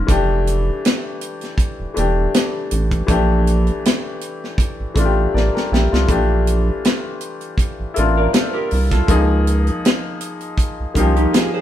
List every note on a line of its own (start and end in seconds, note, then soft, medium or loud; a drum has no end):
0.00 0.10 D#3 medium
0.07 0.71 F1 loud
0.07 1.44 E3 medium
0.07 1.45 A3 medium
0.07 1.45 D4 medium
0.07 kick medium
0.07 closed hi-hat medium
0.11 1.46 G4 medium
0.47 closed hi-hat medium
0.85 snare loud
0.85 closed hi-hat medium
1.21 closed hi-hat medium
1.41 snare soft
1.41 closed hi-hat soft
1.58 kick medium
1.58 closed hi-hat medium
1.80 1.86 E1 soft
1.94 2.28 E1 medium
1.94 2.97 E3 medium
1.94 2.98 A3 medium
1.94 2.99 D4 medium
1.94 closed hi-hat medium
1.99 3.00 G4 medium
2.34 snare loud
2.34 closed hi-hat medium
2.71 3.02 A1 medium
2.71 closed hi-hat medium
2.91 kick medium
2.91 closed hi-hat soft
3.07 3.71 A#1 loud
3.07 4.44 E3 medium
3.07 4.45 A3 medium
3.07 4.45 D4 medium
3.07 kick loud
3.07 closed hi-hat medium
3.11 4.46 G4 medium
3.47 closed hi-hat medium
3.67 closed hi-hat soft
3.85 snare loud
3.85 closed hi-hat medium
4.21 closed hi-hat medium
4.44 snare soft
4.58 kick medium
4.58 closed hi-hat medium
4.80 4.87 A1 soft
4.94 5.27 A1 medium
4.94 5.97 E3 medium
4.94 5.98 A3 medium
4.94 5.34 D4 medium
4.94 kick medium
4.94 closed hi-hat medium
4.99 5.04 F4 medium
5.05 5.38 G4 medium
5.34 5.50 A1 medium
5.34 5.53 A#4 medium
5.34 5.53 D5 medium
5.34 snare soft
5.55 5.71 G4 soft
5.55 5.71 A#4 medium
5.55 snare medium
5.72 5.88 A#1 medium
5.72 5.91 E4 medium
5.72 5.91 G4 medium
5.72 snare medium
5.92 6.07 C2 medium
5.92 6.09 D4 soft
5.92 6.27 F4 medium
5.92 snare medium
6.07 6.71 A#1 loud
6.07 7.44 E3 medium
6.07 7.45 A3 medium
6.07 7.46 D4 medium
6.07 kick loud
6.07 closed hi-hat medium
6.12 7.47 G4 medium
6.47 closed hi-hat medium
6.85 snare loud
6.85 closed hi-hat medium
7.21 closed hi-hat soft
7.41 closed hi-hat soft
7.58 kick medium
7.58 closed hi-hat medium
7.80 7.86 A1 soft
7.94 8.28 A1 medium
7.94 8.98 A#3 medium
7.94 8.99 D4 medium
7.94 8.97 E4 medium
7.94 closed hi-hat medium
7.99 9.00 F4 medium
8.17 8.33 A#4 medium
8.17 8.33 D5 soft
8.33 8.53 A4 medium
8.33 8.52 C5 medium
8.33 snare loud
8.33 closed hi-hat medium
8.53 8.89 G4 medium
8.53 8.89 A#4 medium
8.71 9.03 C2 medium
8.71 open hi-hat soft
8.91 9.27 F4 medium
8.91 9.27 A4 medium
8.91 kick medium
8.91 snare soft
8.91 closed hi-hat soft
9.07 9.71 C#2 loud
9.07 10.44 F3 medium
9.07 10.45 A#3 medium
9.07 10.46 D#4 medium
9.07 kick loud
9.07 closed hi-hat medium
9.11 10.46 G#4 medium
9.47 closed hi-hat medium
9.67 closed hi-hat soft
9.85 snare loud
9.85 closed hi-hat medium
10.21 closed hi-hat medium
10.40 closed hi-hat soft
10.58 kick medium
10.58 closed hi-hat medium
10.80 10.87 C2 soft
10.94 11.27 C2 medium
10.94 11.02 D#3 medium
10.94 11.61 A#3 medium
10.94 11.15 C#4 medium
10.94 11.61 D#4 medium
10.94 11.15 F4 medium
10.94 kick medium
10.94 closed hi-hat medium
10.99 11.61 F3 medium
10.99 11.61 G4 medium
11.16 11.33 D#4 medium
11.16 11.33 G4 medium
11.16 closed hi-hat soft
11.33 11.53 F4 medium
11.33 11.52 G#4 medium
11.33 snare loud
11.33 closed hi-hat medium
11.54 11.61 G#4 medium
11.54 11.61 C5 medium